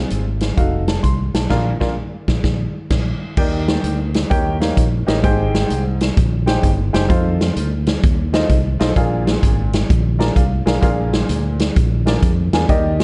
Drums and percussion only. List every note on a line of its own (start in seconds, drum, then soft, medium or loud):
0.10 closed hi-hat medium
0.41 snare medium
0.41 closed hi-hat medium
0.57 kick loud
0.57 closed hi-hat medium
0.88 snare loud
0.88 closed hi-hat medium
1.04 kick medium
1.04 closed hi-hat medium
1.35 snare loud
1.35 closed hi-hat medium
1.50 kick medium
1.50 snare medium
1.50 crash medium
1.81 kick loud
1.81 snare medium
2.28 kick medium
2.28 snare medium
2.44 kick loud
2.44 snare loud
2.90 kick loud
2.90 snare loud
2.90 crash medium
3.37 kick loud
3.37 crash loud
3.68 snare loud
3.68 closed hi-hat medium
3.84 closed hi-hat loud
4.14 snare medium
4.14 closed hi-hat medium
4.31 kick loud
4.31 closed hi-hat medium
4.61 snare loud
4.61 closed hi-hat medium
4.77 kick medium
4.77 closed hi-hat loud
5.08 snare loud
5.08 closed hi-hat medium
5.24 kick loud
5.24 closed hi-hat medium
5.55 snare loud
5.55 closed hi-hat medium
5.70 closed hi-hat medium
6.01 snare medium
6.01 closed hi-hat medium
6.17 kick loud
6.17 closed hi-hat medium
6.47 snare loud
6.47 closed hi-hat medium
6.63 kick medium
6.63 closed hi-hat loud
6.94 snare loud
6.94 closed hi-hat medium
7.10 kick loud
7.10 closed hi-hat medium
7.41 snare loud
7.41 closed hi-hat medium
7.57 closed hi-hat loud
7.87 snare loud
7.87 closed hi-hat medium
8.03 kick loud
8.03 closed hi-hat medium
8.34 snare loud
8.34 closed hi-hat medium
8.49 kick medium
8.49 closed hi-hat loud
8.80 snare loud
8.80 closed hi-hat medium
8.96 kick loud
8.96 closed hi-hat medium
9.27 snare loud
9.27 closed hi-hat medium
9.43 kick loud
9.43 closed hi-hat medium
9.73 snare loud
9.73 closed hi-hat medium
9.90 kick loud
9.90 closed hi-hat loud
10.20 snare loud
10.20 closed hi-hat medium
10.36 kick medium
10.36 closed hi-hat loud
10.67 snare loud
10.67 closed hi-hat medium
10.82 kick loud
10.82 closed hi-hat medium
11.13 snare loud
11.13 closed hi-hat medium
11.29 closed hi-hat loud
11.59 snare medium
11.59 closed hi-hat medium
11.76 kick loud
11.76 closed hi-hat medium
12.07 snare loud
12.07 closed hi-hat medium
12.23 kick loud
12.23 closed hi-hat loud
12.53 snare loud
12.53 closed hi-hat medium
12.69 kick loud
12.69 closed hi-hat medium
13.00 snare loud
13.00 closed hi-hat medium